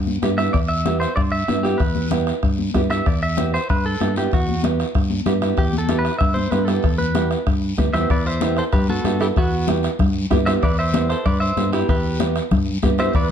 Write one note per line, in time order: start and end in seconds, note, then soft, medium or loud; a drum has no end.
0.00 0.16 G2 medium
0.07 high conga medium
0.22 0.48 G2 medium
0.22 0.28 B3 medium
0.22 0.28 E4 medium
0.22 0.28 G4 medium
0.22 bombo rim medium
0.22 high conga medium
0.22 short guiro medium
0.38 0.55 B3 medium
0.38 0.55 E4 medium
0.38 0.55 G4 medium
0.38 0.53 E5 medium
0.38 bombo rim medium
0.38 short guiro medium
0.53 1.05 E2 medium
0.53 0.58 D5 medium
0.53 bombo low medium
0.53 bombo rim medium
0.53 high conga soft
0.53 long guiro medium
0.69 0.98 E5 medium
0.86 1.08 B3 medium
0.86 1.08 E4 medium
0.86 1.08 G4 medium
0.86 bombo rim medium
0.86 high conga medium
0.86 short guiro medium
1.00 1.15 C5 medium
1.00 bombo rim medium
1.00 short guiro medium
1.16 1.42 G2 medium
1.16 1.21 D5 medium
1.16 bombo low medium
1.16 bombo rim medium
1.16 high conga soft
1.16 long guiro medium
1.32 1.65 E5 medium
1.48 1.74 G2 medium
1.48 1.54 B3 medium
1.48 1.54 E4 medium
1.48 1.54 G4 medium
1.48 bombo rim medium
1.48 high conga medium
1.48 short guiro medium
1.63 1.81 B3 medium
1.63 1.81 E4 medium
1.63 1.78 G4 medium
1.63 1.81 G4 medium
1.63 bombo rim medium
1.63 short guiro medium
1.78 2.30 E2 medium
1.78 2.08 B4 medium
1.78 bombo low medium
1.78 bombo rim medium
1.78 high conga soft
1.78 long guiro medium
1.95 high conga medium
2.11 2.33 B3 medium
2.11 2.34 E4 medium
2.11 2.34 G4 medium
2.11 bombo rim medium
2.11 high conga medium
2.11 short guiro medium
2.27 bombo rim medium
2.27 short guiro medium
2.43 2.68 G2 medium
2.43 bombo low medium
2.43 bombo rim medium
2.43 high conga soft
2.43 long guiro medium
2.58 high conga medium
2.74 3.00 G2 medium
2.74 2.80 B3 medium
2.74 2.80 E4 medium
2.74 2.80 G4 medium
2.74 bombo low medium
2.74 bombo rim medium
2.74 high conga medium
2.74 short guiro medium
2.90 3.07 B3 medium
2.90 3.07 E4 medium
2.90 3.07 G4 medium
2.90 3.07 E5 medium
2.90 bombo rim medium
2.90 short guiro medium
3.06 3.57 E2 medium
3.06 3.22 D5 loud
3.06 bombo low medium
3.06 bombo rim medium
3.06 high conga soft
3.06 long guiro medium
3.23 3.52 E5 loud
3.37 3.59 B3 medium
3.37 3.59 E4 medium
3.37 3.60 G4 medium
3.37 bombo rim medium
3.37 high conga medium
3.37 short guiro medium
3.54 3.70 C5 medium
3.54 bombo rim medium
3.54 short guiro medium
3.69 3.95 G2 medium
3.69 3.84 B4 medium
3.69 bombo low medium
3.69 bombo rim medium
3.69 high conga soft
3.69 long guiro medium
3.86 4.15 A4 medium
4.00 4.26 G2 medium
4.00 4.06 B3 medium
4.00 4.06 E4 medium
4.00 4.06 G4 medium
4.00 bombo rim medium
4.00 high conga medium
4.00 short guiro medium
4.16 4.33 B3 medium
4.16 4.33 E4 medium
4.16 4.33 G4 medium
4.16 bombo rim medium
4.16 short guiro medium
4.31 4.83 E2 medium
4.31 4.62 F#4 medium
4.31 bombo low medium
4.31 bombo rim medium
4.31 high conga soft
4.31 long guiro medium
4.49 high conga medium
4.63 4.85 B3 medium
4.63 4.85 E4 medium
4.63 4.86 G4 medium
4.63 bombo rim medium
4.63 high conga medium
4.63 short guiro medium
4.80 bombo rim medium
4.80 short guiro medium
4.95 5.20 G2 medium
4.95 bombo low medium
4.95 bombo rim medium
4.95 high conga soft
4.95 long guiro medium
5.10 high conga medium
5.26 5.51 G2 medium
5.26 5.32 B3 medium
5.26 5.32 E4 medium
5.26 5.32 G4 medium
5.26 bombo rim medium
5.26 high conga medium
5.26 short guiro medium
5.42 5.58 B3 medium
5.42 5.59 E4 medium
5.42 5.59 G4 medium
5.42 bombo rim medium
5.42 short guiro medium
5.57 6.08 E2 medium
5.57 5.78 G4 medium
5.57 bombo low medium
5.57 bombo rim medium
5.57 high conga soft
5.57 long guiro medium
5.73 high conga medium
5.78 5.98 A4 medium
5.88 6.11 B3 medium
5.88 6.11 E4 medium
5.88 6.11 G4 medium
5.88 bombo rim medium
5.88 high conga medium
5.88 short guiro medium
5.99 6.18 B4 medium
6.05 bombo rim medium
6.05 short guiro medium
6.19 6.46 G2 medium
6.19 6.36 E5 medium
6.19 bombo low medium
6.19 bombo rim medium
6.19 high conga soft
6.19 long guiro medium
6.34 6.51 C5 medium
6.34 high conga medium
6.51 6.77 G2 medium
6.51 6.58 B3 medium
6.51 6.58 E4 medium
6.51 6.58 G4 medium
6.51 6.65 B4 medium
6.51 bombo rim medium
6.51 high conga medium
6.51 short guiro medium
6.65 6.84 B3 medium
6.65 6.85 E4 medium
6.65 6.85 G4 medium
6.65 6.98 A4 medium
6.65 bombo rim medium
6.65 short guiro medium
6.83 7.34 E2 medium
6.83 bombo low medium
6.83 bombo rim medium
6.83 high conga soft
6.83 long guiro medium
6.98 7.28 B4 medium
6.98 high conga medium
7.15 7.37 B3 medium
7.15 7.37 E4 medium
7.15 7.37 G4 medium
7.15 bombo rim medium
7.15 high conga medium
7.15 short guiro medium
7.31 bombo rim medium
7.31 short guiro medium
7.46 7.72 G2 medium
7.46 bombo low medium
7.46 bombo rim medium
7.46 high conga soft
7.46 long guiro medium
7.77 7.93 D2 medium
7.77 7.83 B3 medium
7.77 7.84 E4 medium
7.77 7.84 G4 medium
7.77 bombo low medium
7.77 bombo rim medium
7.77 high conga medium
7.77 short guiro medium
7.93 8.08 E2 medium
7.93 8.10 B3 medium
7.93 8.10 E4 medium
7.93 8.10 G4 medium
7.93 8.09 C5 medium
7.93 8.08 E5 medium
7.93 bombo rim medium
7.93 short guiro medium
8.10 8.60 E2 medium
8.10 8.25 B4 medium
8.10 8.27 D5 medium
8.10 bombo low medium
8.10 bombo rim medium
8.10 high conga soft
8.10 long guiro medium
8.26 8.55 C5 medium
8.26 8.57 E5 medium
8.41 8.64 B3 medium
8.41 8.64 E4 medium
8.41 8.64 G4 medium
8.41 bombo rim medium
8.41 high conga medium
8.41 short guiro medium
8.57 8.64 A4 medium
8.57 8.63 C5 medium
8.57 bombo rim medium
8.57 short guiro medium
8.73 8.98 G2 medium
8.73 8.88 G4 medium
8.73 8.89 B4 medium
8.73 bombo low medium
8.73 bombo rim medium
8.73 high conga soft
8.73 low conga medium
8.73 long guiro medium
8.89 9.18 F#4 medium
8.89 9.22 A4 medium
8.89 high conga medium
9.04 9.29 G2 medium
9.04 9.10 B3 medium
9.04 9.10 E4 medium
9.04 9.10 G4 medium
9.04 bombo rim medium
9.04 high conga medium
9.04 short guiro medium
9.19 9.36 B3 medium
9.19 9.36 E4 medium
9.19 9.26 E4 medium
9.19 9.27 G4 medium
9.19 9.37 A4 medium
9.19 bombo rim medium
9.19 short guiro medium
9.36 9.87 E2 medium
9.36 9.66 B3 medium
9.36 9.66 F#4 medium
9.36 bombo low medium
9.36 bombo rim medium
9.36 high conga soft
9.36 long guiro medium
9.67 9.89 B3 medium
9.67 9.90 E4 medium
9.67 9.90 G4 medium
9.67 bombo rim medium
9.67 high conga medium
9.67 short guiro medium
9.83 bombo rim medium
9.83 short guiro medium
9.99 10.25 G2 medium
9.99 bombo low medium
9.99 bombo rim medium
9.99 high conga soft
9.99 low conga medium
9.99 long guiro medium
10.30 10.56 G2 medium
10.30 10.36 B3 medium
10.30 10.36 E4 medium
10.30 10.36 G4 loud
10.30 bombo low medium
10.30 bombo rim medium
10.30 high conga medium
10.30 short guiro medium
10.46 10.63 B3 medium
10.46 10.63 E4 medium
10.46 10.63 G4 medium
10.46 10.52 C5 medium
10.46 10.51 E5 medium
10.46 bombo rim medium
10.46 short guiro medium
10.62 11.13 E2 medium
10.62 10.78 B4 medium
10.62 10.78 D5 loud
10.62 bombo low medium
10.62 bombo rim medium
10.62 high conga soft
10.62 long guiro medium
10.79 11.08 C5 medium
10.79 11.08 E5 loud
10.93 11.15 B3 medium
10.93 11.16 E4 medium
10.93 11.16 G4 medium
10.93 bombo rim medium
10.93 high conga medium
10.93 short guiro medium
11.09 11.25 A4 medium
11.09 11.24 C5 medium
11.09 bombo rim medium
11.09 short guiro medium
11.26 11.51 G2 medium
11.26 11.41 B4 medium
11.26 11.40 D5 medium
11.26 bombo low medium
11.26 bombo rim medium
11.26 high conga soft
11.26 low conga medium
11.26 long guiro medium
11.40 11.71 C5 medium
11.40 11.70 E5 loud
11.57 11.82 G2 loud
11.57 11.62 B3 medium
11.57 11.63 E4 medium
11.57 11.63 G4 medium
11.57 bombo rim medium
11.57 high conga medium
11.57 short guiro medium
11.72 11.89 B3 medium
11.72 11.89 E4 medium
11.72 11.88 E4 medium
11.72 11.87 G4 medium
11.72 11.89 G4 medium
11.72 bombo rim medium
11.72 short guiro medium
11.88 12.39 E2 medium
11.88 12.18 G4 medium
11.88 12.18 B4 medium
11.88 bombo low medium
11.88 bombo rim medium
11.88 high conga soft
11.88 long guiro medium
12.20 12.42 B3 medium
12.20 12.42 E4 medium
12.20 12.42 G4 medium
12.20 bombo rim medium
12.20 high conga medium
12.20 short guiro medium
12.36 bombo rim medium
12.36 short guiro medium
12.51 12.76 G2 medium
12.51 bombo low medium
12.51 bombo rim medium
12.51 high conga soft
12.51 low conga medium
12.51 long guiro medium
12.82 13.08 G2 medium
12.82 12.88 B3 medium
12.82 12.89 E4 medium
12.82 12.89 G4 medium
12.82 bombo low medium
12.82 bombo rim medium
12.82 high conga medium
12.82 short guiro medium
12.98 13.15 B3 medium
12.98 13.15 E4 medium
12.98 13.15 G4 medium
12.98 13.14 C5 medium
12.98 13.14 E5 loud
12.98 bombo rim medium
12.98 short guiro medium
13.14 13.31 E2 medium
13.14 13.29 B4 medium
13.14 13.30 D5 loud
13.14 bombo low medium
13.14 bombo rim medium
13.14 high conga soft
13.14 long guiro medium